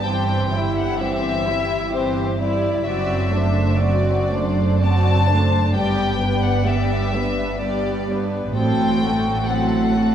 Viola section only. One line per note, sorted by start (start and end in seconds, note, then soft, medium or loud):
0.07 0.51 E3 medium
0.07 0.51 C4 medium
0.54 1.01 G3 soft
0.54 1.00 E4 soft
1.00 1.47 E3 soft
1.00 1.47 C4 medium
1.47 1.94 G3 soft
1.47 1.95 E4 soft
1.94 2.37 E3 soft
1.94 2.37 C4 soft
2.41 2.86 G3 soft
2.41 2.86 E4 soft
2.86 3.29 F#3 medium
2.86 3.29 C4 medium
3.31 3.79 A3 medium
3.31 3.79 D4 soft
3.79 4.30 F#3 medium
3.79 4.30 C4 medium
4.31 4.82 A3 soft
4.31 4.82 D4 soft
4.82 5.26 F#3 medium
4.82 5.26 C4 medium
5.30 5.75 A3 soft
5.30 5.75 D4 soft
5.76 6.17 G3 medium
5.76 6.17 B3 medium
6.20 6.64 G3 soft
6.20 6.64 B3 medium
6.66 7.13 G3 medium
6.66 7.13 B3 medium
7.14 7.61 G3 soft
7.14 7.61 B3 soft
7.62 8.05 G3 medium
7.62 8.06 B3 soft
8.10 8.56 G3 soft
8.10 8.56 B3 soft
8.56 8.99 F#3 medium
8.56 8.99 C4 medium
9.03 9.49 A3 soft
9.49 9.95 F#3 medium
9.49 9.95 C4 soft
9.95 10.15 A3 soft